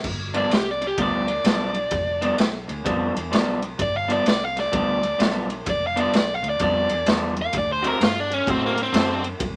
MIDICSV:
0, 0, Header, 1, 6, 480
1, 0, Start_track
1, 0, Tempo, 468384
1, 42, Time_signature, 4, 2, 24, 8
1, 9797, End_track
2, 0, Start_track
2, 0, Title_t, "Overdriven electric guitar"
2, 0, Program_c, 0, 29
2, 383, Note_on_c, 0, 74, 84
2, 529, Note_off_c, 0, 74, 0
2, 553, Note_on_c, 0, 67, 78
2, 694, Note_off_c, 0, 67, 0
2, 728, Note_on_c, 0, 74, 97
2, 862, Note_off_c, 0, 74, 0
2, 892, Note_on_c, 0, 67, 76
2, 1024, Note_off_c, 0, 67, 0
2, 1043, Note_on_c, 0, 74, 92
2, 2424, Note_off_c, 0, 74, 0
2, 3913, Note_on_c, 0, 74, 114
2, 4056, Note_off_c, 0, 74, 0
2, 4069, Note_on_c, 0, 77, 88
2, 4214, Note_off_c, 0, 77, 0
2, 4228, Note_on_c, 0, 74, 84
2, 4374, Note_off_c, 0, 74, 0
2, 4395, Note_on_c, 0, 74, 98
2, 4550, Note_off_c, 0, 74, 0
2, 4550, Note_on_c, 0, 77, 85
2, 4695, Note_off_c, 0, 77, 0
2, 4713, Note_on_c, 0, 74, 84
2, 4856, Note_off_c, 0, 74, 0
2, 4878, Note_on_c, 0, 74, 99
2, 5330, Note_off_c, 0, 74, 0
2, 5840, Note_on_c, 0, 74, 106
2, 5981, Note_off_c, 0, 74, 0
2, 6016, Note_on_c, 0, 77, 91
2, 6149, Note_off_c, 0, 77, 0
2, 6149, Note_on_c, 0, 74, 89
2, 6295, Note_off_c, 0, 74, 0
2, 6330, Note_on_c, 0, 74, 101
2, 6500, Note_off_c, 0, 74, 0
2, 6500, Note_on_c, 0, 77, 92
2, 6631, Note_off_c, 0, 77, 0
2, 6653, Note_on_c, 0, 74, 81
2, 6785, Note_off_c, 0, 74, 0
2, 6797, Note_on_c, 0, 74, 98
2, 7249, Note_off_c, 0, 74, 0
2, 7600, Note_on_c, 0, 77, 106
2, 7740, Note_off_c, 0, 77, 0
2, 7767, Note_on_c, 0, 74, 92
2, 7903, Note_off_c, 0, 74, 0
2, 7916, Note_on_c, 0, 72, 82
2, 8074, Note_off_c, 0, 72, 0
2, 8074, Note_on_c, 0, 70, 96
2, 8216, Note_off_c, 0, 70, 0
2, 8239, Note_on_c, 0, 65, 86
2, 8404, Note_off_c, 0, 65, 0
2, 8404, Note_on_c, 0, 62, 83
2, 8541, Note_off_c, 0, 62, 0
2, 8542, Note_on_c, 0, 61, 86
2, 8709, Note_off_c, 0, 61, 0
2, 8709, Note_on_c, 0, 60, 93
2, 8853, Note_off_c, 0, 60, 0
2, 8875, Note_on_c, 0, 58, 85
2, 9016, Note_off_c, 0, 58, 0
2, 9047, Note_on_c, 0, 60, 88
2, 9492, Note_off_c, 0, 60, 0
2, 9797, End_track
3, 0, Start_track
3, 0, Title_t, "Clean electric guitar"
3, 0, Program_c, 1, 27
3, 347, Note_on_c, 1, 62, 92
3, 352, Note_on_c, 1, 53, 87
3, 353, Note_on_c, 1, 59, 91
3, 357, Note_on_c, 1, 43, 79
3, 514, Note_off_c, 1, 53, 0
3, 515, Note_off_c, 1, 43, 0
3, 521, Note_off_c, 1, 62, 0
3, 523, Note_off_c, 1, 59, 0
3, 998, Note_on_c, 1, 43, 85
3, 1001, Note_on_c, 1, 53, 90
3, 1005, Note_on_c, 1, 59, 89
3, 1011, Note_on_c, 1, 62, 88
3, 1302, Note_off_c, 1, 62, 0
3, 1308, Note_off_c, 1, 59, 0
3, 1310, Note_off_c, 1, 43, 0
3, 1311, Note_off_c, 1, 53, 0
3, 1479, Note_on_c, 1, 43, 83
3, 1483, Note_on_c, 1, 53, 87
3, 1489, Note_on_c, 1, 59, 78
3, 1492, Note_on_c, 1, 62, 91
3, 1775, Note_off_c, 1, 62, 0
3, 1781, Note_off_c, 1, 59, 0
3, 1782, Note_off_c, 1, 53, 0
3, 1791, Note_off_c, 1, 43, 0
3, 2269, Note_on_c, 1, 62, 87
3, 2274, Note_on_c, 1, 59, 88
3, 2280, Note_on_c, 1, 53, 81
3, 2281, Note_on_c, 1, 43, 81
3, 2421, Note_off_c, 1, 43, 0
3, 2427, Note_off_c, 1, 53, 0
3, 2430, Note_off_c, 1, 59, 0
3, 2433, Note_off_c, 1, 62, 0
3, 2913, Note_on_c, 1, 43, 78
3, 2921, Note_on_c, 1, 59, 81
3, 2922, Note_on_c, 1, 53, 92
3, 2922, Note_on_c, 1, 62, 90
3, 3214, Note_off_c, 1, 62, 0
3, 3224, Note_off_c, 1, 59, 0
3, 3226, Note_off_c, 1, 53, 0
3, 3229, Note_off_c, 1, 43, 0
3, 3390, Note_on_c, 1, 43, 79
3, 3398, Note_on_c, 1, 53, 81
3, 3399, Note_on_c, 1, 59, 94
3, 3402, Note_on_c, 1, 62, 95
3, 3700, Note_off_c, 1, 59, 0
3, 3701, Note_off_c, 1, 62, 0
3, 3705, Note_off_c, 1, 53, 0
3, 3708, Note_off_c, 1, 43, 0
3, 4184, Note_on_c, 1, 62, 94
3, 4188, Note_on_c, 1, 59, 89
3, 4189, Note_on_c, 1, 53, 90
3, 4194, Note_on_c, 1, 43, 78
3, 4348, Note_off_c, 1, 43, 0
3, 4349, Note_off_c, 1, 53, 0
3, 4354, Note_off_c, 1, 59, 0
3, 4357, Note_off_c, 1, 62, 0
3, 4833, Note_on_c, 1, 43, 86
3, 4840, Note_on_c, 1, 59, 95
3, 4842, Note_on_c, 1, 53, 91
3, 4846, Note_on_c, 1, 62, 81
3, 5131, Note_off_c, 1, 62, 0
3, 5132, Note_off_c, 1, 59, 0
3, 5137, Note_off_c, 1, 53, 0
3, 5150, Note_off_c, 1, 43, 0
3, 5311, Note_on_c, 1, 43, 79
3, 5318, Note_on_c, 1, 53, 98
3, 5319, Note_on_c, 1, 59, 97
3, 5325, Note_on_c, 1, 62, 91
3, 5615, Note_off_c, 1, 62, 0
3, 5619, Note_off_c, 1, 59, 0
3, 5625, Note_off_c, 1, 53, 0
3, 5629, Note_off_c, 1, 43, 0
3, 6108, Note_on_c, 1, 62, 97
3, 6112, Note_on_c, 1, 59, 100
3, 6117, Note_on_c, 1, 53, 80
3, 6123, Note_on_c, 1, 43, 78
3, 6275, Note_off_c, 1, 43, 0
3, 6280, Note_off_c, 1, 59, 0
3, 6281, Note_off_c, 1, 53, 0
3, 6284, Note_off_c, 1, 62, 0
3, 6766, Note_on_c, 1, 43, 85
3, 6770, Note_on_c, 1, 53, 87
3, 6775, Note_on_c, 1, 59, 81
3, 6776, Note_on_c, 1, 62, 88
3, 7065, Note_off_c, 1, 62, 0
3, 7068, Note_off_c, 1, 59, 0
3, 7071, Note_off_c, 1, 53, 0
3, 7076, Note_off_c, 1, 43, 0
3, 7238, Note_on_c, 1, 43, 77
3, 7242, Note_on_c, 1, 53, 90
3, 7245, Note_on_c, 1, 59, 86
3, 7251, Note_on_c, 1, 62, 94
3, 7531, Note_off_c, 1, 62, 0
3, 7538, Note_off_c, 1, 59, 0
3, 7539, Note_off_c, 1, 53, 0
3, 7552, Note_off_c, 1, 43, 0
3, 8019, Note_on_c, 1, 66, 92
3, 8025, Note_on_c, 1, 57, 77
3, 8025, Note_on_c, 1, 60, 90
3, 8032, Note_on_c, 1, 50, 80
3, 8180, Note_off_c, 1, 50, 0
3, 8187, Note_off_c, 1, 57, 0
3, 8187, Note_off_c, 1, 60, 0
3, 8188, Note_off_c, 1, 66, 0
3, 8674, Note_on_c, 1, 50, 84
3, 8677, Note_on_c, 1, 57, 83
3, 8683, Note_on_c, 1, 60, 92
3, 8687, Note_on_c, 1, 66, 88
3, 8970, Note_off_c, 1, 66, 0
3, 8975, Note_off_c, 1, 60, 0
3, 8977, Note_off_c, 1, 57, 0
3, 8989, Note_off_c, 1, 50, 0
3, 9146, Note_on_c, 1, 50, 82
3, 9151, Note_on_c, 1, 57, 90
3, 9156, Note_on_c, 1, 60, 91
3, 9162, Note_on_c, 1, 66, 83
3, 9442, Note_off_c, 1, 66, 0
3, 9448, Note_off_c, 1, 60, 0
3, 9454, Note_off_c, 1, 57, 0
3, 9464, Note_off_c, 1, 50, 0
3, 9797, End_track
4, 0, Start_track
4, 0, Title_t, "Fingered electric bass"
4, 0, Program_c, 2, 33
4, 47, Note_on_c, 2, 31, 97
4, 448, Note_off_c, 2, 31, 0
4, 517, Note_on_c, 2, 36, 84
4, 923, Note_off_c, 2, 36, 0
4, 1003, Note_on_c, 2, 38, 92
4, 1407, Note_off_c, 2, 38, 0
4, 1477, Note_on_c, 2, 35, 91
4, 1883, Note_off_c, 2, 35, 0
4, 1957, Note_on_c, 2, 29, 99
4, 2364, Note_off_c, 2, 29, 0
4, 2451, Note_on_c, 2, 35, 84
4, 2708, Note_off_c, 2, 35, 0
4, 2751, Note_on_c, 2, 38, 87
4, 2897, Note_off_c, 2, 38, 0
4, 2930, Note_on_c, 2, 41, 98
4, 3188, Note_off_c, 2, 41, 0
4, 3241, Note_on_c, 2, 40, 85
4, 3382, Note_off_c, 2, 40, 0
4, 3413, Note_on_c, 2, 35, 96
4, 3813, Note_off_c, 2, 35, 0
4, 3885, Note_on_c, 2, 31, 102
4, 4289, Note_off_c, 2, 31, 0
4, 4376, Note_on_c, 2, 36, 90
4, 4776, Note_off_c, 2, 36, 0
4, 4853, Note_on_c, 2, 38, 99
4, 5254, Note_off_c, 2, 38, 0
4, 5327, Note_on_c, 2, 35, 97
4, 5731, Note_off_c, 2, 35, 0
4, 5809, Note_on_c, 2, 29, 95
4, 6212, Note_off_c, 2, 29, 0
4, 6287, Note_on_c, 2, 35, 86
4, 6547, Note_off_c, 2, 35, 0
4, 6584, Note_on_c, 2, 38, 86
4, 6733, Note_off_c, 2, 38, 0
4, 6764, Note_on_c, 2, 41, 92
4, 7025, Note_off_c, 2, 41, 0
4, 7074, Note_on_c, 2, 40, 88
4, 7219, Note_off_c, 2, 40, 0
4, 7249, Note_on_c, 2, 40, 95
4, 7651, Note_off_c, 2, 40, 0
4, 7722, Note_on_c, 2, 38, 97
4, 8127, Note_off_c, 2, 38, 0
4, 8205, Note_on_c, 2, 43, 87
4, 8608, Note_off_c, 2, 43, 0
4, 8683, Note_on_c, 2, 45, 95
4, 9086, Note_off_c, 2, 45, 0
4, 9147, Note_on_c, 2, 42, 97
4, 9556, Note_off_c, 2, 42, 0
4, 9636, Note_on_c, 2, 36, 101
4, 9797, Note_off_c, 2, 36, 0
4, 9797, End_track
5, 0, Start_track
5, 0, Title_t, "Muted clean electric guitar strokes"
5, 47, Note_on_c, 9, 29, 45
5, 149, Note_off_c, 9, 29, 0
5, 526, Note_on_c, 9, 29, 46
5, 629, Note_off_c, 9, 29, 0
5, 834, Note_on_c, 9, 29, 56
5, 937, Note_off_c, 9, 29, 0
5, 1315, Note_on_c, 9, 29, 48
5, 1417, Note_off_c, 9, 29, 0
5, 1788, Note_on_c, 9, 29, 52
5, 1890, Note_off_c, 9, 29, 0
5, 1962, Note_on_c, 9, 29, 51
5, 2064, Note_off_c, 9, 29, 0
5, 2433, Note_on_c, 9, 29, 41
5, 2535, Note_off_c, 9, 29, 0
5, 2746, Note_on_c, 9, 29, 52
5, 2848, Note_off_c, 9, 29, 0
5, 3226, Note_on_c, 9, 29, 53
5, 3329, Note_off_c, 9, 29, 0
5, 3713, Note_on_c, 9, 29, 48
5, 3815, Note_off_c, 9, 29, 0
5, 3878, Note_on_c, 9, 29, 44
5, 3981, Note_off_c, 9, 29, 0
5, 4360, Note_on_c, 9, 29, 46
5, 4462, Note_off_c, 9, 29, 0
5, 4679, Note_on_c, 9, 29, 49
5, 4781, Note_off_c, 9, 29, 0
5, 5143, Note_on_c, 9, 29, 55
5, 5246, Note_off_c, 9, 29, 0
5, 5627, Note_on_c, 9, 29, 55
5, 5730, Note_off_c, 9, 29, 0
5, 5799, Note_on_c, 9, 29, 48
5, 5902, Note_off_c, 9, 29, 0
5, 6287, Note_on_c, 9, 29, 47
5, 6390, Note_off_c, 9, 29, 0
5, 6587, Note_on_c, 9, 29, 45
5, 6689, Note_off_c, 9, 29, 0
5, 7077, Note_on_c, 9, 29, 53
5, 7180, Note_off_c, 9, 29, 0
5, 7543, Note_on_c, 9, 29, 51
5, 7645, Note_off_c, 9, 29, 0
5, 7712, Note_on_c, 9, 29, 46
5, 7814, Note_off_c, 9, 29, 0
5, 8192, Note_on_c, 9, 29, 44
5, 8295, Note_off_c, 9, 29, 0
5, 8507, Note_on_c, 9, 29, 50
5, 8610, Note_off_c, 9, 29, 0
5, 8982, Note_on_c, 9, 29, 50
5, 9085, Note_off_c, 9, 29, 0
5, 9454, Note_on_c, 9, 29, 51
5, 9556, Note_off_c, 9, 29, 0
5, 9628, Note_on_c, 9, 29, 47
5, 9730, Note_off_c, 9, 29, 0
5, 9797, End_track
6, 0, Start_track
6, 0, Title_t, "Drums"
6, 42, Note_on_c, 9, 49, 97
6, 43, Note_on_c, 9, 36, 115
6, 144, Note_off_c, 9, 49, 0
6, 145, Note_off_c, 9, 36, 0
6, 351, Note_on_c, 9, 51, 61
6, 453, Note_off_c, 9, 51, 0
6, 525, Note_on_c, 9, 51, 78
6, 544, Note_on_c, 9, 38, 118
6, 628, Note_off_c, 9, 51, 0
6, 646, Note_off_c, 9, 38, 0
6, 836, Note_on_c, 9, 51, 61
6, 938, Note_off_c, 9, 51, 0
6, 1001, Note_on_c, 9, 51, 76
6, 1002, Note_on_c, 9, 36, 97
6, 1104, Note_off_c, 9, 51, 0
6, 1105, Note_off_c, 9, 36, 0
6, 1310, Note_on_c, 9, 51, 60
6, 1412, Note_off_c, 9, 51, 0
6, 1481, Note_on_c, 9, 51, 82
6, 1499, Note_on_c, 9, 38, 106
6, 1583, Note_off_c, 9, 51, 0
6, 1602, Note_off_c, 9, 38, 0
6, 1788, Note_on_c, 9, 51, 61
6, 1890, Note_off_c, 9, 51, 0
6, 1955, Note_on_c, 9, 51, 83
6, 1961, Note_on_c, 9, 36, 109
6, 2057, Note_off_c, 9, 51, 0
6, 2063, Note_off_c, 9, 36, 0
6, 2274, Note_on_c, 9, 51, 70
6, 2377, Note_off_c, 9, 51, 0
6, 2441, Note_on_c, 9, 51, 92
6, 2459, Note_on_c, 9, 38, 108
6, 2543, Note_off_c, 9, 51, 0
6, 2562, Note_off_c, 9, 38, 0
6, 2756, Note_on_c, 9, 51, 62
6, 2859, Note_off_c, 9, 51, 0
6, 2928, Note_on_c, 9, 36, 107
6, 2931, Note_on_c, 9, 51, 83
6, 3030, Note_off_c, 9, 36, 0
6, 3034, Note_off_c, 9, 51, 0
6, 3243, Note_on_c, 9, 51, 65
6, 3346, Note_off_c, 9, 51, 0
6, 3410, Note_on_c, 9, 51, 80
6, 3428, Note_on_c, 9, 38, 113
6, 3512, Note_off_c, 9, 51, 0
6, 3531, Note_off_c, 9, 38, 0
6, 3713, Note_on_c, 9, 51, 66
6, 3816, Note_off_c, 9, 51, 0
6, 3886, Note_on_c, 9, 36, 108
6, 3886, Note_on_c, 9, 51, 78
6, 3988, Note_off_c, 9, 36, 0
6, 3989, Note_off_c, 9, 51, 0
6, 4199, Note_on_c, 9, 51, 63
6, 4301, Note_off_c, 9, 51, 0
6, 4365, Note_on_c, 9, 51, 81
6, 4383, Note_on_c, 9, 38, 115
6, 4467, Note_off_c, 9, 51, 0
6, 4486, Note_off_c, 9, 38, 0
6, 4680, Note_on_c, 9, 51, 57
6, 4699, Note_on_c, 9, 38, 30
6, 4783, Note_off_c, 9, 51, 0
6, 4801, Note_off_c, 9, 38, 0
6, 4846, Note_on_c, 9, 51, 72
6, 4847, Note_on_c, 9, 36, 106
6, 4948, Note_off_c, 9, 51, 0
6, 4950, Note_off_c, 9, 36, 0
6, 5156, Note_on_c, 9, 51, 59
6, 5258, Note_off_c, 9, 51, 0
6, 5327, Note_on_c, 9, 51, 80
6, 5346, Note_on_c, 9, 38, 108
6, 5430, Note_off_c, 9, 51, 0
6, 5448, Note_off_c, 9, 38, 0
6, 5635, Note_on_c, 9, 51, 64
6, 5737, Note_off_c, 9, 51, 0
6, 5802, Note_on_c, 9, 51, 82
6, 5807, Note_on_c, 9, 36, 109
6, 5905, Note_off_c, 9, 51, 0
6, 5910, Note_off_c, 9, 36, 0
6, 6117, Note_on_c, 9, 51, 70
6, 6220, Note_off_c, 9, 51, 0
6, 6286, Note_on_c, 9, 51, 90
6, 6304, Note_on_c, 9, 38, 113
6, 6388, Note_off_c, 9, 51, 0
6, 6407, Note_off_c, 9, 38, 0
6, 6596, Note_on_c, 9, 51, 62
6, 6699, Note_off_c, 9, 51, 0
6, 6758, Note_on_c, 9, 51, 80
6, 6765, Note_on_c, 9, 36, 111
6, 6860, Note_off_c, 9, 51, 0
6, 6867, Note_off_c, 9, 36, 0
6, 7065, Note_on_c, 9, 51, 67
6, 7167, Note_off_c, 9, 51, 0
6, 7239, Note_on_c, 9, 51, 89
6, 7257, Note_on_c, 9, 38, 118
6, 7341, Note_off_c, 9, 51, 0
6, 7360, Note_off_c, 9, 38, 0
6, 7548, Note_on_c, 9, 51, 60
6, 7650, Note_off_c, 9, 51, 0
6, 7714, Note_on_c, 9, 51, 89
6, 7723, Note_on_c, 9, 36, 102
6, 7817, Note_off_c, 9, 51, 0
6, 7825, Note_off_c, 9, 36, 0
6, 8035, Note_on_c, 9, 51, 68
6, 8137, Note_off_c, 9, 51, 0
6, 8209, Note_on_c, 9, 51, 87
6, 8227, Note_on_c, 9, 38, 110
6, 8311, Note_off_c, 9, 51, 0
6, 8330, Note_off_c, 9, 38, 0
6, 8520, Note_on_c, 9, 51, 62
6, 8622, Note_off_c, 9, 51, 0
6, 8683, Note_on_c, 9, 36, 110
6, 8689, Note_on_c, 9, 51, 73
6, 8785, Note_off_c, 9, 36, 0
6, 8791, Note_off_c, 9, 51, 0
6, 8993, Note_on_c, 9, 51, 60
6, 9095, Note_off_c, 9, 51, 0
6, 9160, Note_on_c, 9, 51, 82
6, 9178, Note_on_c, 9, 38, 117
6, 9262, Note_off_c, 9, 51, 0
6, 9281, Note_off_c, 9, 38, 0
6, 9471, Note_on_c, 9, 51, 60
6, 9574, Note_off_c, 9, 51, 0
6, 9633, Note_on_c, 9, 51, 88
6, 9635, Note_on_c, 9, 36, 112
6, 9736, Note_off_c, 9, 51, 0
6, 9738, Note_off_c, 9, 36, 0
6, 9797, End_track
0, 0, End_of_file